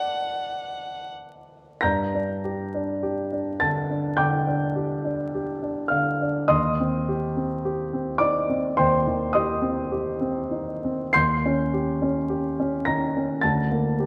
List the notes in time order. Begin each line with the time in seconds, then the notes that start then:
Already playing: D2 D4 F#4 A4 D5 F#5 A5 D6
1.81 G2 A#5 G6 A#6
2.14 D4
2.45 G4
2.74 D4
3.03 G4
3.32 D4
3.60 D3 A5 A6
3.91 D4
4.17 D3 G5 D6 G6
4.47 D4
4.76 G4
5.05 D4
5.35 G4
5.63 D4
5.88 D3 F5 F6
6.21 D4
6.48 D#2 D#5 C6 D#6
6.80 C4
7.09 G4
7.37 C4
7.65 G4
7.93 C4
8.18 D#4 D5 D6
8.49 C4
8.77 D#2 C5 G5 C6
9.07 D#3
9.33 G4 D#5 C6 D#6
9.62 C4
9.92 G4
10.21 C4
10.51 D#4
10.85 C4
11.13 D#2 C6 G6 C7
11.46 C#4
11.74 G4
12.02 C#4
12.30 G4
12.60 C#4
12.85 D#3 A#5 A#6
13.17 C#4
13.41 D2 A5 A6
13.71 A#3
14.00 G4